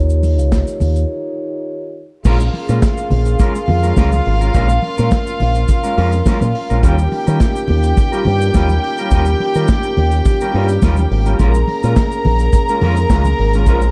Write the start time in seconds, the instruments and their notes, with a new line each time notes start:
Already playing: fingered electric bass D#2, french horn section D#3 D#4 F4 G4 C#5
0.10 shaker
0.23 open hi-hat, muted conga, shaker
0.39 fingered electric bass C#2, closed hi-hat, shaker
0.52 kick, snare, closed hi-hat, high conga, shaker
0.67 shaker
0.80 fingered electric bass D#2, open hi-hat, low conga, shaker
0.96 closed hi-hat, shaker
2.25 fingered electric bass A#1, clean electric guitar G#3 C#4 F4 A#4, french horn section A#3 C#4 G#4, string section F4 F5, kick, crash, shaker
2.40 muted clean electric guitar stroke, shaker
2.54 muted clean electric guitar stroke, open hi-hat, muted conga
2.68 fingered electric bass A#2, clean electric guitar G#3 C#4 F4 A#4, closed hi-hat, shaker
2.82 kick, snare, closed hi-hat, high conga, shaker
2.97 muted clean electric guitar stroke, shaker
3.10 fingered electric bass A#1, open hi-hat, low conga
3.25 muted clean electric guitar stroke, closed hi-hat, shaker
3.39 clean electric guitar G#3 C#4 F4 A#4, kick, closed hi-hat, muted conga, shaker
3.55 muted clean electric guitar stroke, shaker
3.68 fingered electric bass F2, muted clean electric guitar stroke, open hi-hat, low conga
3.83 clean electric guitar G#3 C#4 F4 A#4, closed hi-hat, shaker
3.96 fingered electric bass C#2, clean electric guitar G#3 C#4 F4 A#4, kick, snare, closed hi-hat, high conga, shaker
4.12 muted clean electric guitar stroke, high conga, shaker
4.26 fingered electric bass G#1, muted clean electric guitar stroke, open hi-hat
4.41 clean electric guitar G#3 C#4 F4 A#4, closed hi-hat, shaker
4.54 fingered electric bass A#1, clean electric guitar G#3 C#4 F4 A#4, french horn section A#4, kick, closed hi-hat, muted conga, shaker
4.69 muted clean electric guitar stroke, shaker
4.82 muted clean electric guitar stroke, open hi-hat, muted conga
4.98 fingered electric bass A#2, clean electric guitar G#3 C#4 F4 A#4, closed hi-hat, shaker
5.11 kick, snare, closed hi-hat, high conga, shaker
5.27 muted clean electric guitar stroke, shaker
5.40 fingered electric bass A#1, open hi-hat, low conga
5.55 muted clean electric guitar stroke, closed hi-hat, shaker
5.68 muted clean electric guitar stroke, kick, closed hi-hat, muted conga, low conga, shaker
5.83 clean electric guitar G#3 C#4 F4 A#4, shaker
5.97 fingered electric bass F2, clean electric guitar G#3 C#4 F4 A#4, open hi-hat
6.12 muted clean electric guitar stroke, closed hi-hat, shaker
6.26 clean electric guitar G#3 C#4 F4 A#4, kick, snare, closed hi-hat, high conga, shaker
6.41 fingered electric bass A#2, muted clean electric guitar stroke, high conga, shaker
6.54 muted clean electric guitar stroke, open hi-hat
6.70 fingered electric bass A#1, clean electric guitar G#3 C#4 F4 A#4, closed hi-hat, shaker
6.83 fingered electric bass D#2, french horn section D#3 A#3 F4 G4, clean electric guitar G3 C#4 F4 A#4, string section G4 G5, kick, closed hi-hat, shaker
6.98 muted clean electric guitar stroke, shaker
7.11 muted clean electric guitar stroke, open hi-hat, muted conga
7.27 fingered electric bass D#3, clean electric guitar G3 C#4 F4 A#4, closed hi-hat, shaker
7.40 muted clean electric guitar stroke, kick, snare, closed hi-hat, high conga, shaker
7.55 muted clean electric guitar stroke, shaker
7.68 fingered electric bass D#2, open hi-hat, low conga
7.83 muted clean electric guitar stroke, closed hi-hat, shaker
7.96 muted clean electric guitar stroke, kick, closed hi-hat, muted conga, shaker
8.12 clean electric guitar G3 C#4 F4 A#4, shaker
8.25 fingered electric bass G2, muted clean electric guitar stroke, open hi-hat, low conga
8.41 muted clean electric guitar stroke, closed hi-hat, shaker
8.54 fingered electric bass D#2, clean electric guitar G3 C#4 F4 A#4, kick, snare, closed hi-hat, high conga, shaker
8.69 muted clean electric guitar stroke, high conga, shaker
8.84 muted clean electric guitar stroke, open hi-hat
8.98 clean electric guitar G3 C#4 F4 A#4, closed hi-hat, shaker
9.11 fingered electric bass D#2, clean electric guitar G3 C#4 F4 A#4, kick, closed hi-hat, muted conga, shaker
9.25 muted clean electric guitar stroke, shaker
9.40 muted clean electric guitar stroke, open hi-hat, muted conga
9.54 fingered electric bass D#3, clean electric guitar G3 C#4 F4 A#4, closed hi-hat, shaker
9.68 kick, snare, closed hi-hat, high conga, shaker
9.83 muted clean electric guitar stroke, shaker
9.97 fingered electric bass D#2, open hi-hat, low conga
10.11 muted clean electric guitar stroke, closed hi-hat, shaker
10.25 muted clean electric guitar stroke, kick, closed hi-hat, muted conga, low conga, shaker
10.41 clean electric guitar G3 C#4 F4 A#4, shaker
10.54 fingered electric bass G2, clean electric guitar G3 C#4 F4 A#4, open hi-hat
10.68 muted clean electric guitar stroke, closed hi-hat, shaker
10.82 fingered electric bass D#2, clean electric guitar G3 C#4 F4 A#4, kick, snare, closed hi-hat, high conga, shaker
10.97 muted clean electric guitar stroke, high conga, shaker
11.11 fingered electric bass G#1, muted clean electric guitar stroke, open hi-hat
11.26 clean electric guitar G3 C#4 F4 A#4, closed hi-hat, shaker
11.39 fingered electric bass A#1, clean electric guitar G#3 C#4 F4 A#4, french horn section G#4, string section A#4 A#5, kick, closed hi-hat, muted conga, shaker
11.54 muted clean electric guitar stroke, shaker
11.68 muted clean electric guitar stroke, open hi-hat, muted conga
11.83 fingered electric bass A#2, clean electric guitar G#3 C#4 F4 A#4, closed hi-hat, shaker
11.96 kick, snare, closed hi-hat, high conga, shaker
12.12 muted clean electric guitar stroke, shaker
12.24 fingered electric bass A#1, open hi-hat, low conga
12.39 muted clean electric guitar stroke, closed hi-hat, shaker
12.53 muted clean electric guitar stroke, kick, closed hi-hat, muted conga, shaker
12.69 clean electric guitar G#3 C#4 F4 A#4, shaker
12.81 fingered electric bass F2, clean electric guitar G#3 C#4 F4 A#4, open hi-hat, low conga
12.96 muted clean electric guitar stroke, closed hi-hat, shaker
13.10 fingered electric bass C#2, clean electric guitar G#3 C#4 F4 A#4, kick, snare, closed hi-hat, high conga, shaker
13.25 muted clean electric guitar stroke, high conga, shaker
13.38 fingered electric bass G#1, muted clean electric guitar stroke, open hi-hat
13.53 clean electric guitar G#3 C#4 F4 A#4, closed hi-hat, shaker
13.66 fingered electric bass A#1, clean electric guitar G#3 C#4 F4 A#4, kick, closed hi-hat, muted conga, shaker
13.81 muted clean electric guitar stroke, shaker